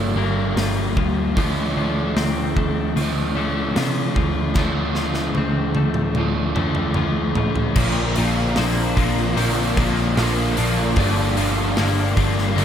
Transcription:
Already playing: G1 G2 D3 F3 G3 A#3 D4
0.16 G1 G2 D3 G3 A#3 D4
0.55 G1 G2 D3 F3 G3 A#3 D4, snare, open hi-hat
0.97 D2 F3, kick
1.36 D2 D3 F3 A3 D4, kick, open hi-hat
1.77 D2 F3
2.17 D2 C4, snare, open hi-hat
2.56 D2 A3, kick
2.96 D2 D3 F3 A3, open hi-hat
3.01 D4
3.35 D3 F3 A3 D4
3.76 C3 D3 F3 A3 D4, snare, open hi-hat
4.16 D2 F3, kick
4.54 D2 D3 F3 A3 D4, kick, snare
4.95 F3, snare
5.14 snare
5.35 D2 C4, high tom
5.75 D2 A3, high tom
5.94 mid tom
6.15 D2 D3 F3, mid tom
6.19 A3 D4
6.55 D2 D3 F3 A3 D4, mid tom
6.75 mid tom
6.94 D2 D3 F3 A3 D4, mid tom
7.35 A2 F3, floor tom
7.56 floor tom
7.76 A#1 A#2 D3 F3 A#3 D4, kick, crash
8.15 A#1 A#2 F3 A#3 D4, open hi-hat
8.55 A#1 A#2 D3 F3 A#3 C4, snare, open hi-hat
8.59 D4
8.96 A#1 A#2 F3 A#3 D4, kick, open hi-hat
9.36 A#1 A#2 D3 F3 A#3 C4 D4, open hi-hat
9.76 A#1 A#2 F3 A#3 D4, kick, open hi-hat
10.16 A#1 A#2 D3 F3 A#3, snare, open hi-hat
10.20 D4
10.57 A#1 A#2 F3 A#3 D4, open hi-hat
10.61 F3
10.96 G1 G2 D3 F3 G3 A#3 D4, kick, open hi-hat
11.37 G1 G2 D3 F3 G3 A#3 D4, open hi-hat
11.77 G1 G2 D3 G3 A#3 D4, snare, open hi-hat
12.16 G1 G2 D3 F3 G3 A#3 D4, kick, open hi-hat
12.38 snare
12.56 G1 G2 D3 G3 A#3 D4, open hi-hat

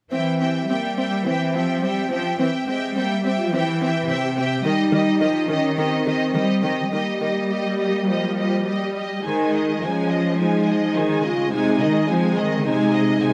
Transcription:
0.12 E3 C4 G4 E5 G5
0.40 C4 G4 E5 G5
0.69 G3 A#3 C4 G4 E5 G5
0.97 C4 G4 E5 G5
1.26 E3 C4 G4 E5 G5
1.54 F3 C4 G4 E5 G5
1.83 G3 C4 G4 E5 G5
2.10 F3 C4 C#4 G4 E5 G5
2.38 E3 C4 G4 E5 G5
2.67 G#3 C4 G4 E5 G5
2.96 G3 A#3 C4 G4 E5 G5
3.22 C4 G4 E5 G5
3.37 F4
3.50 E3 E4 G4 E5
3.54 C4 G5
3.82 C4 G4 E5 G5
4.08 C3 C4 G4 E5 G5
4.37 C4 G4 E5 G5
4.63 D#3 G3 D#4 G4 D#5
4.92 D#3 G4 D#5
5.21 D#3 F3 G4 D#5
5.47 D#3 C#4 G4 D#5
5.74 C4 G4 D#5
5.78 D#3 D#5
6.05 D#3 G4 D#5
6.34 D#3 G3 G4 D#5
6.63 D#3 G4 D#5
6.91 D#3 G3 A#3 G4 D#5
7.20 D#3 G4 D#5
7.49 G3 G4 D#5
7.79 G4 D#5
8.08 F3 G4 D#5
8.37 G4 D#5
8.67 G3 G4 D#5
8.96 G4 D#5
9.23 D#3 G#3 D#4 C5 G#5
9.53 G#4 D#5
9.81 F3 G#3 D#4 C5 G#5
9.85 C#4
10.09 G#4 D#5
10.38 G#3 D#4 C5 G#5
10.67 G#4 D#5
10.94 D#3 G#3 D#4 C5 G#5
11.24 C#3 F4 G#4 D#5
11.52 C3 G#3 D#4 C5 G#5
11.79 D#3 G#4 D#5
12.08 F3 G#3 C4 D#4 C5 G#5
12.36 D#3 G#4 D#5
12.64 C3 G#3 D#4 C5 G#5
12.90 G#4 D#5
12.94 D#5
13.20 C3 G#3 D#4 C5 G#5

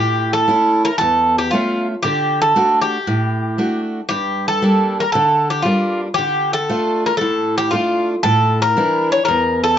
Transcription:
Already playing: A2 G4
0.33 A4
0.48 A3 C#4 E4
0.85 A#4
0.98 E2 A4
1.38 G4
1.51 A3 C#4 F4 E5
2.03 D3 G4
2.42 A4
2.56 A3 D4 F#4
2.82 G4
3.07 A2
3.58 A3 D4 F#4
4.09 G2 G4
4.48 A4
4.62 G3 A#3 D4
5.00 A#4
5.12 D3 A4
5.50 G4
5.62 G3 A#3 D4 F4
6.14 G4
6.18 D3
6.53 A4
6.69 A3 D4 F4
7.06 A#4
7.17 A2 A4
7.58 G4
7.71 A3 D4 F4
8.23 A2 A4
8.62 A#4
8.77 E3 D4 E4
9.12 C#5
9.25 E2 A#4
9.63 A4

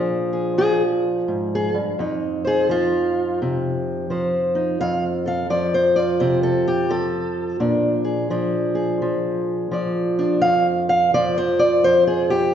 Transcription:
Already playing: A#2 F3 D4 G#4
0.33 G#4
0.58 F3 G#4
1.28 G#2
1.55 G#4
1.74 G2
1.99 F2 D#4
2.45 G#4 C5
2.69 F3 F4
3.42 C3
4.10 F3 C5
4.55 D#4
4.81 F2 F5
5.26 A4 F5
5.50 F3 D5
5.74 C5
5.96 F4 D5
6.20 C3 C5
6.43 A4
6.68 G4
6.89 F3 A4
7.60 A#2 D4
8.04 G#4
8.30 F3 D4
8.75 G#4
9.02 F3
9.71 F3 D5
10.19 D4
10.41 F2 F5
10.89 F5
11.14 F3 D5
11.38 C5
11.59 D5
11.84 F2 C5
12.07 G#4
12.30 G4

